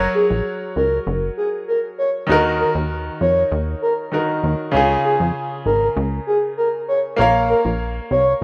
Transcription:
Already playing: grand piano F#3 F#4 A#4 C#5
0.15 soft synth lead G#4
0.30 analog synth bass A#1
0.76 analog synth bass C#2, soft synth lead A#4
1.07 analog synth bass F#1
1.37 soft synth lead G#4
1.68 soft synth lead A#4
1.98 soft synth lead C#5
2.27 analog synth bass D#2, grand piano D#3 D#4 F#4
2.32 grand piano A#4
2.60 soft synth lead A#4
2.75 analog synth bass D#2
3.21 analog synth bass F2, soft synth lead C#5
3.52 analog synth bass D#2
3.82 soft synth lead A#4
4.12 grand piano D#3 D#4 F#4 A#4
4.43 analog synth bass D#2
4.72 analog synth bass C#2, grand piano C#3 C#4 F4
4.76 grand piano G#4
5.05 soft synth lead G#4
5.20 analog synth bass F2
5.66 analog synth bass G#1, soft synth lead A#4
5.96 analog synth bass C#2
6.27 soft synth lead G#4
6.57 soft synth lead A#4
6.88 soft synth lead C#5
7.16 analog synth bass A#1, grand piano A#3 A#4 C#5
7.21 grand piano F5
7.49 soft synth lead A#4
7.65 analog synth bass A#1
8.11 analog synth bass C2, soft synth lead C#5

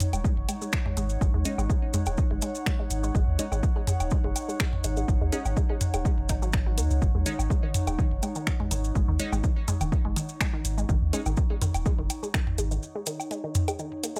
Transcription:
Already playing: ambient pad D#4 C#5 F#5
0.00 closed hi-hat, mid tom, maracas
0.13 sub bass D#1, synth pluck G#3, closed hi-hat, low woodblock, maracas
0.24 synth pluck G#3, kick, maracas
0.37 sub bass F#1
0.49 synth pluck G#3, closed hi-hat, low woodblock, maracas
0.62 synth pluck G#3, maracas
0.72 finger snap, kick, maracas
0.86 synth pluck G#3, mid tom
0.97 sub bass G#1, synth pluck G#3, closed hi-hat, maracas
1.09 maracas
1.21 sub bass G#1, synth pluck G#3, kick, maracas
1.34 sub bass D#2, synth pluck G#3
1.45 synth stab G#3 C#4 D#4, closed hi-hat, maracas
1.58 sub bass G#1, synth pluck G#3, low woodblock, maracas
1.70 synth pluck G#3, kick, maracas
1.94 synth pluck G#3, closed hi-hat, mid tom, maracas
2.06 sub bass D#1, synth pluck G#3, closed hi-hat, low woodblock, maracas
2.17 kick, maracas
2.31 sub bass F#1, synth pluck G#3
2.42 synth pluck G#3, closed hi-hat, maracas
2.55 maracas
2.66 synth pluck G#3, finger snap, kick, maracas
2.79 synth pluck G#3
2.90 sub bass G#1, closed hi-hat, maracas
3.03 synth pluck G#3, maracas
3.15 sub bass G#1, synth pluck G#3, kick, maracas
3.28 sub bass D#2
3.39 synth stab G#3 C#4 D#4, synth pluck G#3, closed hi-hat, maracas
3.52 sub bass G#1, synth pluck G#3, low woodblock, maracas
3.63 kick, maracas
3.76 synth pluck G#3
3.87 synth pluck G#3, closed hi-hat, mid tom, maracas
4.00 sub bass D#1, closed hi-hat, low woodblock, maracas
4.10 synth pluck G#3, kick, maracas
4.24 sub bass F#1, synth pluck G#3
4.36 closed hi-hat, low woodblock, maracas
4.49 synth pluck G#3, maracas
4.60 synth pluck G#3, finger snap, kick, maracas
4.73 mid tom
4.84 sub bass G#1, synth pluck G#3, closed hi-hat, maracas
4.97 synth pluck G#3, maracas
5.08 sub bass G#1, kick, maracas
5.21 sub bass D#2, synth pluck G#3
5.32 synth stab G#3 C#4 D#4, synth pluck G#3, closed hi-hat, maracas
5.45 sub bass G#1, low woodblock, maracas
5.57 synth pluck G#3, kick, maracas
5.70 synth pluck G#3
5.81 closed hi-hat, mid tom, maracas
5.94 sub bass D#1, synth pluck G#3, closed hi-hat, low woodblock, maracas
6.05 synth pluck G#3, kick, maracas
6.18 sub bass F#1
6.29 sub bass G#1, synth pluck D#4, kick, closed hi-hat, maracas
6.42 synth pluck F#3, maracas
6.53 synth pluck D#4, finger snap, kick, maracas
6.66 synth pluck F#3
6.78 sub bass D#2, synth pluck A#3, closed hi-hat, maracas
6.91 sub bass C#2, maracas
7.02 sub bass G#1, kick, maracas
7.15 sub bass D#2, synth pluck G#3
7.26 synth pluck D#3, synth stab G#3 C#4 D#4, closed hi-hat, maracas
7.39 sub bass G#1, low woodblock, maracas
7.50 synth pluck G#3, kick, maracas
7.63 synth pluck D#3
7.74 closed hi-hat, mid tom, maracas
7.87 sub bass D#1, synth pluck G#3, closed hi-hat, low woodblock, maracas
7.99 synth pluck D#3, kick, maracas
8.12 sub bass F#1
8.23 synth pluck G#3, closed hi-hat, low woodblock, maracas
8.35 synth pluck D#3, maracas
8.47 finger snap, kick, maracas
8.60 synth pluck G#3, mid tom
8.71 sub bass G#1, synth pluck D#3, closed hi-hat, maracas
8.84 maracas
8.95 sub bass G#1, synth pluck G#3, kick, maracas
9.08 sub bass D#2, synth pluck D#3
9.19 synth stab G#3 C#4 D#4, closed hi-hat, maracas
9.32 sub bass G#1, synth pluck G#3, low woodblock, maracas
9.44 synth pluck D#3, kick, maracas
9.68 synth pluck G#3, closed hi-hat, mid tom, maracas
9.81 sub bass D#1, synth pluck D#3, closed hi-hat, low woodblock, maracas
9.92 kick, maracas
10.05 sub bass F#1, synth pluck G#3
10.16 synth pluck D#3, closed hi-hat, maracas
10.29 maracas
10.41 synth pluck G#3, finger snap, kick, maracas
10.53 synth pluck D#3
10.65 sub bass G#1, closed hi-hat, maracas
10.78 synth pluck G#3, maracas
10.89 sub bass G#1, synth pluck D#3, kick, maracas
11.02 sub bass D#2
11.13 synth stab G#3 C#4 D#4, synth pluck G#3, closed hi-hat, maracas
11.26 sub bass G#1, synth pluck D#3, low woodblock, maracas
11.37 kick, maracas
11.50 synth pluck G#3
11.62 synth pluck D#3, closed hi-hat, mid tom, maracas
11.74 sub bass D#1, closed hi-hat, low woodblock, maracas
11.86 synth pluck G#3, kick, maracas
11.99 sub bass F#1, synth pluck D#3
12.10 closed hi-hat, low woodblock, maracas
12.23 synth pluck G#3, maracas
12.34 synth pluck D#3, finger snap, kick, maracas
12.47 mid tom
12.58 sub bass G#1, synth pluck G#3, closed hi-hat, maracas
12.71 synth pluck D#3, maracas
12.83 maracas
12.95 synth pluck G#3
13.06 synth pluck D#3, closed hi-hat, maracas
13.20 low woodblock, maracas
13.31 synth pluck G#3, closed hi-hat, maracas
13.44 synth pluck D#3
13.55 closed hi-hat, mid tom, maracas
13.68 synth pluck G#3, closed hi-hat, low woodblock, maracas
13.79 synth pluck D#3, maracas
14.04 synth pluck A#3, closed hi-hat, maracas
14.16 synth pluck G#3, maracas

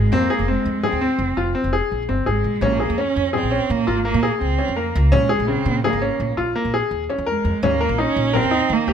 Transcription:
Already playing: cello G#3
0.12 upright bass F2, cello A#3, grand piano C4, frame drum
0.30 grand piano G#4, frame drum
0.39 upright bass F1
0.48 cello G#3, grand piano C4, frame drum
0.66 upright bass F2
0.83 cello C4, grand piano G#4, frame drum
0.92 upright bass D#2
1.01 grand piano C4
1.19 upright bass F1
1.37 upright bass F1, grand piano F4, frame drum
1.55 grand piano C4
1.64 upright bass F1
1.73 grand piano G#4
1.92 upright bass A#1
2.09 upright bass G1, grand piano C4, frame drum
2.26 upright bass G#1, cello G#3, grand piano G#4
2.44 upright bass A#1
2.61 upright bass A#1, cello A#3, grand piano C#4, frame drum
2.80 grand piano G#4
2.90 upright bass F2
2.98 grand piano C#4, cello C#4, frame drum
3.16 upright bass F2
3.33 cello C4, grand piano G#4, frame drum
3.43 upright bass A#1
3.51 grand piano C#4
3.70 upright bass A#2, cello A#3
3.87 upright bass G#1, grand piano F4, frame drum
4.05 grand piano A#3, cello A#3
4.14 upright bass A#2
4.23 grand piano G#4
4.41 upright bass C#2, cello C4
4.59 grand piano C#4, frame drum
4.68 upright bass F2
4.76 cello A#3, grand piano A#4
4.95 upright bass C#2
5.12 upright bass A#2, cello G#3, grand piano C#4, frame drum
5.29 grand piano G#4
5.40 upright bass A#1
5.48 grand piano C#3, cello C4, frame drum
5.66 upright bass A#2
5.84 cello A#3, grand piano G#4, frame drum
5.93 upright bass G#1
6.02 grand piano C#4
6.20 upright bass A#1
6.37 upright bass A#1, grand piano F4, frame drum
6.56 grand piano A#3
6.65 upright bass A#1
6.74 grand piano G#4
6.91 upright bass D#2
7.09 grand piano C#4, frame drum
7.18 upright bass F2
7.26 cello G#3, grand piano A#4
7.45 upright bass F2
7.63 upright bass D#2, cello A#3, grand piano C#4, frame drum
7.81 grand piano A#4
7.89 upright bass A#1
7.98 cello C#4, grand piano D#4, frame drum
8.16 upright bass A#1
8.33 cello C4, grand piano A#4, frame drum
8.43 upright bass D#2
8.51 grand piano D#4
8.70 upright bass D#3, cello A#3
8.87 upright bass C#2, grand piano G4, frame drum

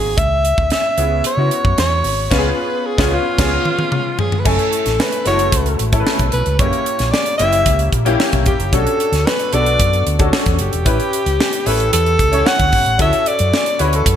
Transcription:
Already playing: fingered electric bass G#1, grand piano A#3 C4 D#4 F#4, alto saxophone G#4
0.18 fingered electric bass C#2, alto saxophone E5, kick, closed hi-hat
0.45 closed hi-hat
0.58 fingered electric bass D2, kick
0.70 alto saxophone E5, snare, closed hi-hat
0.97 fingered electric bass C#2, grand piano B3 C#4 E4 G#4, closed hi-hat
1.24 alto saxophone C#5, muted fingered electric bass stroke, closed hi-hat
1.37 fingered electric bass C#3, grand piano B3 C#4 E4 F#4
1.51 closed hi-hat
1.65 fingered electric bass F#2, kick
1.78 fingered electric bass E2, alto saxophone C#5, snare, closed hi-hat
2.04 fingered electric bass G#1, open hi-hat
2.31 fingered electric bass C#2, grand piano B3 C#4 F4, alto saxophone B4, kick, snare, crash
2.38 grand piano G#4
2.86 alto saxophone G#4
2.98 fingered electric bass C#2, grand piano B3 C#4 F4 G#4, kick, snare
3.14 alto saxophone F4
3.38 fingered electric bass C#2, grand piano B3 C#4 F4 G#4, kick, snare, crash
3.65 high tom
3.79 high tom
3.92 mid tom
4.19 alto saxophone G#4, floor tom
4.32 floor tom
4.40 alto saxophone B4
4.45 fingered electric bass F#1, grand piano A3 C#4 E4 G#5, alto saxophone A4, kick, crash
4.59 closed hi-hat
4.73 closed hi-hat
4.86 fingered electric bass A1, snare, closed hi-hat
5.00 alto saxophone B4, snare
5.12 closed hi-hat
5.25 fingered electric bass F#1, grand piano G#3 C#4 E4 F#4, alto saxophone C#5, snare, closed hi-hat
5.32 grand piano A3
5.39 closed hi-hat
5.52 fingered electric bass C#2, kick, closed hi-hat
5.66 closed hi-hat
5.79 fingered electric bass A1, closed hi-hat
5.92 grand piano A3 C#4 E4 A4, kick, closed hi-hat
6.00 grand piano B4
6.07 snare
6.19 fingered electric bass B1, kick, closed hi-hat
6.32 fingered electric bass B1, alto saxophone B4, closed hi-hat
6.46 fingered electric bass C#2, closed hi-hat
6.59 fingered electric bass F#1, grand piano A#3 C#4 E4 G4, alto saxophone C#5, kick, closed hi-hat
6.73 closed hi-hat
6.86 closed hi-hat
6.99 fingered electric bass A#1, snare, closed hi-hat
7.12 alto saxophone D5, snare
7.26 closed hi-hat
7.38 fingered electric bass F#1, grand piano A#3 C#4 E4 G4, alto saxophone E5, closed hi-hat
7.53 closed hi-hat
7.66 fingered electric bass C#2, kick, closed hi-hat
7.79 closed hi-hat
7.92 fingered electric bass A#1, kick, closed hi-hat
8.05 grand piano A#3 C#4 E4 G4, closed hi-hat
8.20 snare
8.32 fingered electric bass B1, kick, closed hi-hat
8.46 fingered electric bass E1, alto saxophone G4, kick, closed hi-hat
8.59 fingered electric bass F#1, closed hi-hat
8.72 fingered electric bass B1, grand piano C#4 D4 F#4 A4, alto saxophone A4, kick, closed hi-hat
8.87 closed hi-hat
9.00 closed hi-hat
9.12 fingered electric bass D2, snare, closed hi-hat
9.26 alto saxophone B4, snare
9.39 closed hi-hat
9.52 fingered electric bass B1, grand piano B3 D4 F#4 A4, alto saxophone D5, closed hi-hat
9.66 closed hi-hat
9.79 fingered electric bass F#2, kick, closed hi-hat
9.93 closed hi-hat
10.07 fingered electric bass D2, closed hi-hat
10.19 grand piano C#4 D4 F#4 A4, kick, closed hi-hat
10.33 snare
10.46 fingered electric bass E2, kick, closed hi-hat
10.59 fingered electric bass F#1, alto saxophone G4, closed hi-hat
10.73 fingered electric bass E1, closed hi-hat
10.85 fingered electric bass A1, grand piano C#4 E4 G4 B4, kick, closed hi-hat
11.00 closed hi-hat
11.13 closed hi-hat
11.26 fingered electric bass C#2, closed hi-hat
11.40 snare
11.53 closed hi-hat
11.66 fingered electric bass A1, grand piano C#4 E4 G4 B4, alto saxophone A4, open hi-hat
11.80 closed hi-hat
11.93 fingered electric bass E2, alto saxophone A4, closed hi-hat
12.06 closed hi-hat
12.19 fingered electric bass C#2, kick, closed hi-hat
12.32 grand piano C#4 E4 G4 C#5, closed hi-hat
12.46 alto saxophone F#5, snare
12.59 fingered electric bass D2, kick, closed hi-hat
12.72 fingered electric bass G1, kick, open hi-hat
12.86 fingered electric bass A1, closed hi-hat
12.98 fingered electric bass D2, grand piano C#4 E4 F#4 A4, alto saxophone E5, kick, closed hi-hat
13.13 closed hi-hat
13.26 alto saxophone D5, closed hi-hat
13.39 fingered electric bass F#2, closed hi-hat
13.54 snare
13.66 closed hi-hat
13.79 fingered electric bass D2, grand piano C#4 E4 F#4 B4, alto saxophone C#5, closed hi-hat
13.93 alto saxophone A4, closed hi-hat
14.06 fingered electric bass F#2, kick, closed hi-hat

